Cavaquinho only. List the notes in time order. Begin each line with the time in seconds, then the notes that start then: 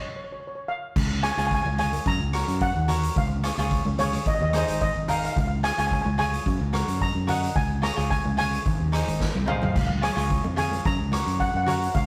1.22 F4 G#4 C#5
1.38 F4 G#4 C#5
1.78 F4 G#4 C#5
2.33 F#4 A#4 C#5
2.88 F#4 A#4 C#5
3.43 F4 G#4 C#5
3.58 F4 G#4 C#5
3.99 F4 G#4 C#5
4.54 D#4 G#4 C5
5.08 D#4 G#4 A#4
5.63 F4 G#4 C#5
5.78 F4 G#4 C#5
6.18 F4 G#4 C#5
6.73 F#4 A#4 C#5
7.27 F#4 A#4 D#5
7.82 F4 G#4 C#5
7.96 F4 G#4 C#5
8.37 F4 G#4 C#5
8.92 D#4 G#4 C5
9.46 D#4 G#4 C5
10.01 F4 G#4 C#5
10.16 F4 G#4 C#5
10.56 F4 G#4 C#5
11.12 F#4 A#4 C#5
11.66 F#4 A#4 C#5